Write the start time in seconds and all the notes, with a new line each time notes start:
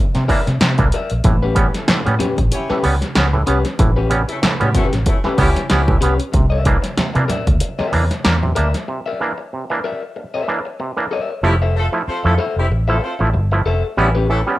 0.15 C3, muted clean electric guitar stroke, snare, closed hi-hat
0.28 E3 A#3 D4 A#4 D5 E5, kick, open hi-hat, high conga
0.47 C3, muted clean electric guitar stroke, snare, closed hi-hat, high conga
0.61 C3, muted clean electric guitar stroke, snare, closed hi-hat, muted conga
0.78 C2 E3 A#3 D4, muted clean electric guitar stroke, kick, closed hi-hat, low conga
0.92 A#3 D4 A#4 D5 E5, closed hi-hat
1.10 A#1, muted clean electric guitar stroke, closed hi-hat
1.24 A1 A2 E3, muted clean electric guitar stroke, kick, closed hi-hat, muted conga, low conga
1.42 B3 C#4 G4 B4, muted conga
1.55 G3 B3 C#4 E4 G4, muted clean electric guitar stroke, kick, closed hi-hat, high conga
1.74 A3 C#4 E4 A4, muted clean electric guitar stroke, snare, closed hi-hat
1.88 A2 E3, muted fingered electric bass stroke, snare, closed hi-hat, high conga
2.05 A2 G3 B3 C#4, muted clean electric guitar stroke, closed hi-hat, high conga
2.19 B3 C#4 G4 B4, snare, closed hi-hat, low conga
2.37 A1, muted clean electric guitar stroke, kick, closed hi-hat, high conga
2.51 B3 C#4 E4 G4 C#5, muted clean electric guitar stroke, closed hi-hat, muted conga
2.68 A2 E3 C#4 G4 B4, muted fingered electric bass stroke, snare, muted conga
2.83 C#2 G3 B3 C#4, muted clean electric guitar stroke, open hi-hat, high conga
3.01 muted clean electric guitar stroke, snare, closed hi-hat, high conga
3.15 C#2 B3 C#4, muted clean electric guitar stroke, snare, closed hi-hat
3.33 A2 E3, muted clean electric guitar stroke, muted conga, low conga
3.47 C2 B3 C#4 G4 B4, closed hi-hat
3.65 muted clean electric guitar stroke, snare, closed hi-hat
3.79 A1 A2 E3, muted clean electric guitar stroke, kick, closed hi-hat, low conga
3.96 B3 C#4 G4 B4
4.10 G3 B3 C#4, muted clean electric guitar stroke, closed hi-hat, high conga
4.28 A3 C#4 E4 A4, muted clean electric guitar stroke, closed hi-hat
4.42 A2 E3, muted fingered electric bass stroke, snare, closed hi-hat, high conga
4.60 A2 G3 B3 C#4 E4 G4, muted clean electric guitar stroke, closed hi-hat, muted conga, high conga
4.74 A3 B3 C#4 E4 G4 A4 B4, kick, closed hi-hat, low conga
4.93 A1, muted clean electric guitar stroke, snare, closed hi-hat, high conga
5.06 A3 B3 C#4 E4 A4, muted clean electric guitar stroke, kick, closed hi-hat
5.24 A2 E3 C#4 G4 B4, muted fingered electric bass stroke, snare, muted conga
5.38 C#2 G3 B3 C#4 E4 G4, muted clean electric guitar stroke, kick, open hi-hat, high conga
5.55 muted clean electric guitar stroke, snare, closed hi-hat, high conga
5.70 C#2 G3 B3 C#4 E4 G4, muted clean electric guitar stroke, snare, closed hi-hat, muted conga
5.87 A2 E3, muted clean electric guitar stroke, kick, low conga
6.01 C2 B3 C#4 G4 B4, closed hi-hat
6.18 muted clean electric guitar stroke, closed hi-hat
6.32 C2 C3, muted clean electric guitar stroke, kick, closed hi-hat, muted conga, low conga
6.50 A#3 D4 A#4 D5 E5, muted conga
6.65 E3 A#3 D4, muted clean electric guitar stroke, kick, closed hi-hat, high conga
6.82 muted clean electric guitar stroke, snare, closed hi-hat
6.97 C3, muted fingered electric bass stroke, snare, closed hi-hat, muted conga, high conga
7.14 C3 E3 A#3 D4, muted clean electric guitar stroke, closed hi-hat, high conga
7.28 A#3 D4 A#4 D5 E5, snare, closed hi-hat, low conga
7.47 D2, muted clean electric guitar stroke, kick, closed hi-hat, high conga
7.60 A#3 D4, muted clean electric guitar stroke, closed hi-hat
7.79 C3 A#4 D5 E5, muted fingered electric bass stroke, snare, muted conga
7.92 E2 E3 A#3 D4, muted clean electric guitar stroke, open hi-hat, high conga
8.11 muted clean electric guitar stroke, snare, closed hi-hat, high conga
8.24 E2 A#3 D4, muted clean electric guitar stroke, snare, closed hi-hat, muted conga
8.43 C3, muted clean electric guitar stroke, muted conga, low conga
8.55 D2 A#3 D4 A#4 D5 E5, closed hi-hat
8.73 muted clean electric guitar stroke, snare, closed hi-hat
8.88 C3, muted clean electric guitar stroke
9.06 A#3 D4 A#4 D5 E5
9.20 E3 A#3 D4, muted clean electric guitar stroke
9.38 muted clean electric guitar stroke
9.53 C3
9.70 E3 A#3 D4, muted clean electric guitar stroke
9.84 A#3 D4 A#4 D5 E5
10.03 muted clean electric guitar stroke
10.16 A#3 D4, muted clean electric guitar stroke
10.34 C3 A#4 D5 E5
10.48 E3 A#3 D4, muted clean electric guitar stroke
10.65 muted clean electric guitar stroke
10.80 C3, muted clean electric guitar stroke
10.97 E3 A#3 D4, muted clean electric guitar stroke
11.11 A#3 D4 A#4 D5 E5
11.30 muted clean electric guitar stroke
11.43 F1 F3 G3 A3 C4 E4 G4, muted clean electric guitar stroke
11.62 A4 C5 E5
11.76 A3 F4 A4, muted clean electric guitar stroke
11.92 F3 A3 E4, muted clean electric guitar stroke
12.08 C4 F4 A4 C5, muted fingered electric bass stroke
12.24 F2 F3 A3 E4 F4 A4, muted clean electric guitar stroke
12.38 A3 E4 A4 C5 E5
12.56 F1 G3 C4 E4 G4, muted clean electric guitar stroke
12.70 A1, muted clean electric guitar stroke
12.88 F3 A3 E4 F4 A4 C5 E5
13.02 C4 F4 A4 C5, muted clean electric guitar stroke
13.19 A1 F3 A3 E4, muted clean electric guitar stroke
13.34 G1, muted clean electric guitar stroke
13.52 F3 A3 E4, muted clean electric guitar stroke
13.65 F1 A3 E4 A4 C5 E5
13.85 muted clean electric guitar stroke
13.97 A1 G3 B3 C#4 E4 G4, muted clean electric guitar stroke
14.15 C#4 G4 B4
14.28 A2 E3 A3 C#4 E4 A4, muted clean electric guitar stroke
14.47 G3 B3 C#4, muted clean electric guitar stroke